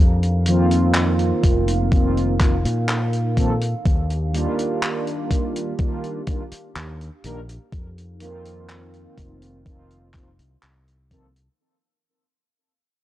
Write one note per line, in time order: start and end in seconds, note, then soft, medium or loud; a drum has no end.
0.00 1.31 F2 medium
0.00 3.81 D#4 medium
0.00 3.81 A#4 medium
0.00 11.55 F5 medium
0.23 closed hi-hat soft
0.45 1.85 D#3 medium
0.45 1.86 F3 medium
0.45 1.86 A#3 medium
0.45 1.86 C4 medium
0.45 1.87 F4 loud
0.45 closed hi-hat loud
0.71 closed hi-hat medium
0.94 clap loud
0.94 closed hi-hat medium
1.19 closed hi-hat soft
1.43 2.64 F1 medium
1.43 kick medium
1.43 closed hi-hat medium
1.68 closed hi-hat medium
1.91 2.34 D#3 medium
1.91 2.34 F3 medium
1.91 2.34 A#3 medium
1.91 2.35 C4 medium
1.91 2.35 F4 medium
1.91 kick loud
1.91 closed hi-hat medium
2.17 closed hi-hat soft
2.39 2.55 D#3 medium
2.39 2.55 F3 medium
2.39 2.56 A#3 medium
2.39 2.56 C4 medium
2.39 2.56 F4 medium
2.39 kick loud
2.39 clap medium
2.39 closed hi-hat loud
2.65 3.73 A#2 loud
2.65 closed hi-hat medium
2.89 clap loud
2.89 closed hi-hat medium
3.13 closed hi-hat soft
3.36 3.52 D#3 medium
3.36 3.52 F3 medium
3.36 3.52 A#3 medium
3.36 3.53 C4 medium
3.36 3.53 A4 loud
3.36 kick medium
3.36 closed hi-hat medium
3.61 closed hi-hat medium
3.85 4.46 D#2 loud
3.85 7.69 D4 medium
3.85 7.69 G4 medium
3.85 kick loud
3.85 closed hi-hat medium
4.10 closed hi-hat soft
4.32 5.72 D#3 medium
4.32 5.73 G3 medium
4.32 5.73 A#3 medium
4.32 5.73 D4 medium
4.32 5.74 F4 medium
4.32 closed hi-hat medium
4.59 closed hi-hat medium
4.82 clap loud
4.82 closed hi-hat medium
5.07 closed hi-hat soft
5.31 kick medium
5.31 closed hi-hat loud
5.56 closed hi-hat medium
5.78 6.21 D#3 medium
5.78 6.21 G3 medium
5.78 6.21 A#3 medium
5.78 6.22 D4 medium
5.78 6.22 F4 medium
5.78 kick loud
5.78 closed hi-hat medium
6.04 closed hi-hat soft
6.26 6.42 D#3 medium
6.26 6.42 G3 medium
6.26 6.43 A#3 medium
6.26 6.43 D4 medium
6.26 6.43 F4 medium
6.26 kick loud
6.26 closed hi-hat loud
6.52 muted fingered electric bass stroke soft
6.52 closed hi-hat medium
6.76 7.09 D#2 medium
6.76 clap loud
6.76 closed hi-hat medium
7.01 closed hi-hat soft
7.23 7.57 A#1 loud
7.23 7.39 D#3 medium
7.23 7.39 G3 medium
7.23 7.39 A#3 medium
7.23 7.40 D4 medium
7.23 7.40 A#4 loud
7.23 closed hi-hat loud
7.49 closed hi-hat medium
7.72 9.05 F2 medium
7.72 11.56 D#4 medium
7.72 11.56 A#4 medium
7.72 kick loud
7.72 closed hi-hat medium
7.98 closed hi-hat soft
8.19 9.59 D#3 medium
8.19 9.60 F3 medium
8.19 9.60 A#3 medium
8.19 9.61 C4 medium
8.19 9.61 F4 medium
8.19 closed hi-hat loud
8.45 closed hi-hat medium
8.69 clap loud
8.69 closed hi-hat medium
8.94 closed hi-hat soft
9.18 10.39 F1 medium
9.18 kick medium
9.18 closed hi-hat medium
9.42 closed hi-hat medium
9.65 10.08 D#3 medium
9.65 10.08 F3 medium
9.65 10.09 A#3 medium
9.65 10.09 C4 medium
9.65 10.09 F4 medium
9.65 kick loud
9.65 closed hi-hat medium
9.91 closed hi-hat soft
10.13 10.29 D#3 medium
10.13 10.30 F3 medium
10.13 10.30 A#3 medium
10.13 10.30 C4 medium
10.13 10.30 F4 medium
10.13 kick loud
10.13 clap medium
10.13 closed hi-hat medium
10.39 10.55 C2 medium
10.39 closed hi-hat medium
10.63 11.47 C2 medium
10.63 clap loud
10.63 closed hi-hat medium
10.88 closed hi-hat soft
11.10 11.26 D#3 medium
11.10 11.26 F3 medium
11.10 11.26 A#3 medium
11.10 11.27 C4 medium
11.10 11.27 A4 loud
11.10 kick medium
11.10 closed hi-hat loud
11.36 closed hi-hat medium